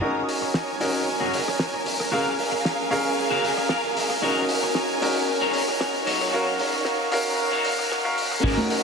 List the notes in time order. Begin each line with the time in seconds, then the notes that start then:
0.01 C#4 D#4 F#4 G#4 A#4 C#5 G#5
0.29 open hi-hat
0.41 muted clean electric guitar stroke
0.54 muted clean electric guitar stroke, snare
0.80 C#4 D#4 F#4 A#4, open hi-hat
1.20 F#4 G#4 A#4 C#5
1.33 open hi-hat
1.48 cross-stick
1.59 muted clean electric guitar stroke, snare
1.73 muted clean electric guitar stroke
1.85 muted clean electric guitar stroke, open hi-hat
2.00 cross-stick
2.11 C#4 F#4 G#4 A#4 F5 G#5
2.39 open hi-hat
2.51 muted clean electric guitar stroke
2.64 muted clean electric guitar stroke, snare
2.90 C#4 G#4 A#4 F5, open hi-hat
3.30 F#4 G#4 A#4 F5
3.44 open hi-hat
3.57 cross-stick
3.69 A#4, muted clean electric guitar stroke, snare
3.83 muted clean electric guitar stroke
3.96 muted clean electric guitar stroke, open hi-hat
4.10 cross-stick
4.22 C#4 D#4 F#4 G#4 A#4 C#5 G#5
4.49 open hi-hat
4.62 muted clean electric guitar stroke
4.75 muted clean electric guitar stroke, snare
5.01 C#4 D#4 F#4 A#4, open hi-hat
5.41 F#4 G#4 A#4 C#5
5.53 open hi-hat
5.68 cross-stick
5.80 muted clean electric guitar stroke, snare
5.94 muted clean electric guitar stroke
6.06 F#3 D#4 F#4 C#5, open hi-hat
6.21 cross-stick
6.32 C#4 F#4 A#4 F5
6.59 open hi-hat
6.73 muted clean electric guitar stroke
6.85 muted clean electric guitar stroke, snare
7.11 C#4 F#4 A#4 F5, open hi-hat
7.52 F#3 D#4 F#4 C#5
7.64 open hi-hat
7.79 cross-stick
7.91 muted clean electric guitar stroke, snare
8.04 C#4 F#4 A#4 F5, muted clean electric guitar stroke
8.17 muted clean electric guitar stroke, open hi-hat
8.32 cross-stick
8.43 G#1 C#4 D#4 F#4 G#4 A#4 C#5 A#5, kick, crash
8.57 high conga
8.69 muted clean electric guitar stroke, open hi-hat